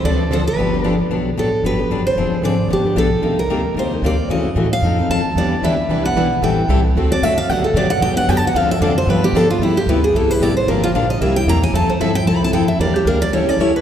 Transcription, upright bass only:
X:1
M:4/4
L:1/8
Q:"Swing" 1/4=226
K:Gmix
V:1 name="Upright bass" clef=bass
D,,4 G,,,4 | [K:G] B,,,2 A,,,2 G,,,2 F,,,2 | =F,,, z _A,,,2 G,,, z B,,,2 | C,,2 D,,2 _E,,2 D,,2 |
F,,2 A,,2 =F,,2 _E,,2 | E,,2 D,,2 C,,2 B,,,2 | A,,,2 C,,2 D,,2 F,,2 | G,,2 B,,2 E,,2 F,,2 |
D,,2 =F,,2 G,,2 D,2 | [K:C] G,,2 D,,2 C,,2 A,,,2 | G,,,2 _B,,,2 C,,2 E,,2 | F,, z G,,2 C,,2 F,,2 |
E,,2 D,,2 ^C,,2 E,,2 |]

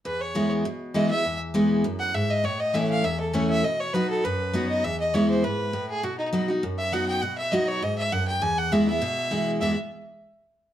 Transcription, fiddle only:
X:1
M:4/4
L:1/16
Q:1/4=201
K:E
V:1 name="Fiddle"
B2 c4 z6 d2 e2- | e2 z8 f2 e2 d2 | c2 d2 e2 =f2 e2 A2 c2 e2 | d2 c2 B2 A2 B6 d2 |
e2 d2 c2 =c2 B6 G2 | F2 D2 z6 e2 f2 =g2 | f2 e2 d2 c2 d2 e2 f2 =g2 | g2 f2 e2 e8- e z |
e2 z12 z2 |]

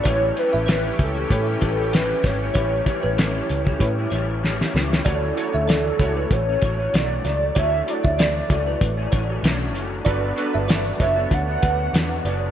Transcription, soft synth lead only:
X:1
M:4/4
L:1/8
Q:"Swing 16ths" 1/4=96
K:D
V:1 name="Soft synth lead"
c B B A A2 B c- | c6- c z | A4 c2 d2 | e d4 z3 |
z2 d e f3 z |]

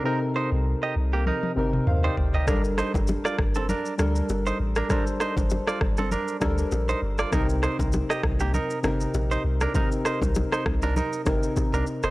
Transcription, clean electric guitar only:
X:1
M:4/4
L:1/16
Q:"Swing 16ths" 1/4=99
K:Cdor
V:1 name="Clean electric guitar"
[EB] z [Ec] z2 [Ge] z [B,G] [EB]2 z3 [Ec] z [Ge] | [DB] z [Ec] z2 [Fd] z [CA] [DB]2 z3 [Ec] z [DB] | [DB] z [Ec] z2 [Fd] z [CA] [DB]2 z3 [Ec] z [Fd] | [EB] z [Ec] z2 [Ge] z [B,G] [EB]2 z3 [Ec] z [DB] |
[EB] z [Ec] z2 [Ec] z [DB] [EB]2 z3 [DB] z [Ec] |]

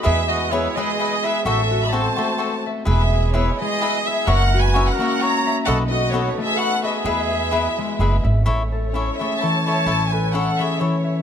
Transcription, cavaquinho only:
X:1
M:3/4
L:1/8
Q:"Swing" 1/4=129
K:E
V:1 name="Cavaquinho"
[EGBe] z [EGBe] [EGBe] [EGBe] [EGBe] | [FA=ce] z [FAce] [FAce] [FAce] z | [EGBe] z [EGBe] z [EGBe] z | [F^Ace] z [FAce] [FAce] [FAce] z |
[FABd] z [FABd] z [FABd] [FABd] | [EGBe] z [EGBe] z [EGBe] z | [K:A] [EAce] z [EAce] [EAce] [EAce] [EAce] | [EAce] z [EAce] [EAce] [EAce] z |]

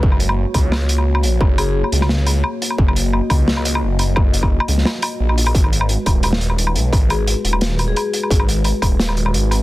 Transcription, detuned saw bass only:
X:1
M:4/4
L:1/8
Q:1/4=174
K:G#m
V:1 name="Detuned saw bass" clef=bass
F,,,2 z C,,4 A,,, | F,,,2 z C,,3 z2 | F,,,2 z C,,3 F,,,2 | F,,,2 z C,, z2 A,,,2 |
G,,,2 z D,,,4 B,,, | G,,,2 z D,,,3 z2 | G,,,2 z D,,,3 G,,,2 |]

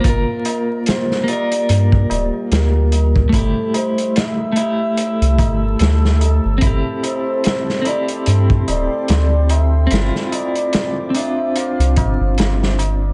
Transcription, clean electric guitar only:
X:1
M:4/4
L:1/8
Q:"Swing 16ths" 1/4=73
K:Gdor
V:1 name="Clean electric guitar"
[B,FB]3 [B,FB]4- [B,FB] | [A,EG]3 [A,EG]4- [A,EG] | [CEG]3 [CEG]4- [CEG] | [CEF]3 [CDF]4- [CDF] |]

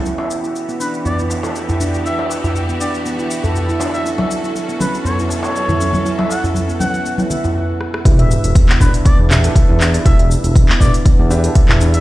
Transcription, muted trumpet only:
X:1
M:4/4
L:1/16
Q:"Swing 16ths" 1/4=120
K:Edor
V:1 name="Muted trumpet"
z6 B z d z6 z | e z4 z d z8 e | z6 B z c z2 c4- c- | c z f z3 f3 z6 z |
z6 B z d z6 z | e z4 z d z8 e |]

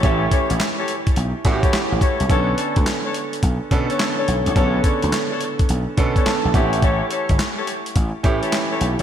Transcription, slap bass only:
X:1
M:4/4
L:1/16
Q:"Swing 16ths" 1/4=106
K:Bm
V:1 name="Slap bass" clef=bass
A,,,2 z A,,, z4 B,,, z A,, z2 A,,, z =C,, | B,,,2 z D,, z4 B,,, z B,, z3 B,,, =C,, | B,,,2 z D,, z4 B,,, z B,, z2 B,,, A,,,2- | A,,,2 z G,,, z4 A,,, z A,, z3 B,,, z |]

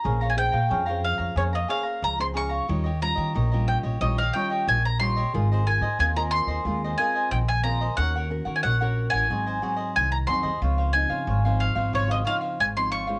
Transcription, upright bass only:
X:1
M:4/4
L:1/16
Q:1/4=91
K:Bbdor
V:1 name="Upright bass" clef=bass
B,,,3 B,, F,,3 F,, F,,2 z2 D,,4 | E,,3 E, B,,,3 B,,, B,,,2 z2 B,,,4 | A,,,3 A,, E,,3 E,, E,,2 z2 B,,,4 | E,,3 E, B,,,3 =A,,, _A,,,2 z2 C,,2 F,, E,, |
D,,3 D, A,,,3 A,,, A,,,2 z2 A,,,4 |]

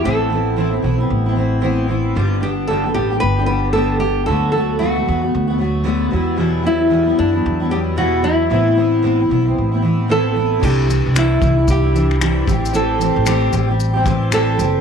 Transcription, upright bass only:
X:1
M:4/4
L:1/16
Q:"Swing 16ths" 1/4=113
K:Ador
V:1 name="Upright bass" clef=bass
A,,,6 B,,,2 A,,,8 | G,,,6 A,,,2 G,,,8 | D,,6 E,,2 D,,6 E,,2- | E,,6 F,,2 E,,8 |
A,,,6 B,,,2 A,,,8 | C,,3 C,,3 C,,8 A,,,2- | A,,,3 A,,,3 A,,,8 F,,,2 |]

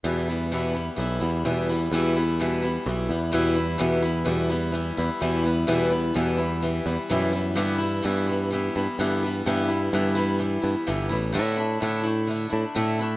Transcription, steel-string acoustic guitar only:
X:1
M:4/4
L:1/8
Q:1/4=127
K:Em
V:1 name="Steel-string acoustic guitar" clef=bass
[E,,B,,E,G,B,E] [E,G,B,E] [E,,B,,E,G,B,E] [E,G,B,E] [E,G,B,E] [E,G,B,E] [E,,B,,E,G,B,E] [E,G,B,E] | [E,,B,,E,G,B,E] [E,G,B,E] [E,,B,,E,G,B,E] [E,G,B,E] [E,G,B,E] [E,G,B,E] [E,,B,,E,G,B,E] [E,G,B,E] | [E,,B,,E,G,B,E] [E,G,B,E] [E,,B,,E,G,B,E] [E,G,B,E] [E,G,B,E] [E,G,B,E] [E,,B,,E,G,B,E] [E,G,B,E] | [E,,B,,E,G,B,E] [E,G,B,E] [E,,B,,E,G,B,E] [E,G,B,E] [E,G,B,E] [E,G,B,E] [E,,B,,E,G,B,E] [E,G,B,E] |
[G,,D,E,G,B,E] [E,G,B,E] [G,,D,E,G,B,E] [E,G,B,E] [E,G,B,E] [E,G,B,E] [G,,D,E,G,B,E] [E,G,B,E] | [G,,D,E,G,B,E] [E,G,B,E] [G,,D,E,G,B,E] [E,G,B,E] [E,G,B,E] [E,G,B,E] [G,,D,E,G,B,E] [E,G,B,E] | [A,,D,A,DE] [A,DE] [A,,D,A,DE] [A,DE] [D,A,DE] [A,DE] [A,,D,A,DE] [A,DE] |]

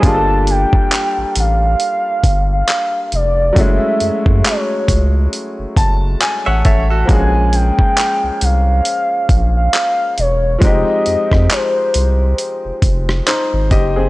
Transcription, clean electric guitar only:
X:1
M:4/4
L:1/16
Q:"Swing 16ths" 1/4=68
K:Bbmix
V:1 name="Clean electric guitar"
[ce] z12 z3 | z12 z [^c=e] [=Ac] [^FA]- | [^F=A] z12 z3 | z16 |]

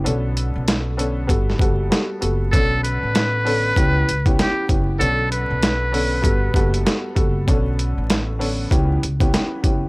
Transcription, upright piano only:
X:1
M:4/4
L:1/16
Q:"Swing 16ths" 1/4=97
K:Bm
V:1 name="Upright piano"
[D,B,CA]6 [D,B,CA]2 [G,B,FA]2 [G,B,FA]2 [G,B,FA]2 [G,B,FA]2 | [D,B,CA]6 [D,B,CA]2 [E,B,CG]2 z [E,B,CG]3 [E,B,CG]2 | [D,B,CA]6 [D,B,CA]2 [G,B,FA]2 [G,B,FA]2 [G,B,FA]2 [G,B,FA]2 | [D,B,CA]6 [D,B,CA]2 [E,B,CG]2 z [E,B,CG]3 [E,B,CG]2 |]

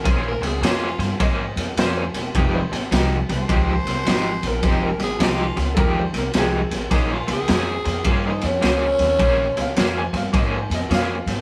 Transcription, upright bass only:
X:1
M:4/4
L:1/8
Q:"Swing" 1/4=105
K:Bbdor
V:1 name="Upright bass" clef=bass
B,,, D,, F,, G,, A,, F,, F,, =E,,, | F,,, A,,, C,, C,, D,, C,, A,,, B,,, | F,,, A,,, C,, D,, E,, C,, C,, =A,,, | B,,, D,, F,, F,, G,, F,, D,, E,, |
B,,, D,, F,, G,, A,, F,, F,, A,, |]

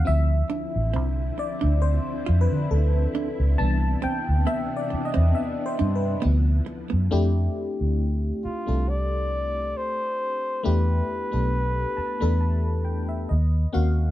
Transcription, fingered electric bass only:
X:1
M:4/4
L:1/16
Q:"Swing 16ths" 1/4=68
K:Flyd
V:1 name="Fingered electric bass" clef=bass
D,,2 z A,,, C,,2 z D,,2 z F,, D, D,,2 z ^C,, | C,,2 z D,, z3 E,, z2 G,,2 D,,2 z ^F,, | F,,2 z D,,3 z C,,4- C,, z4 | E,,2 z B,,,3 z E,,4- E,, _E,,2 E,,2 |]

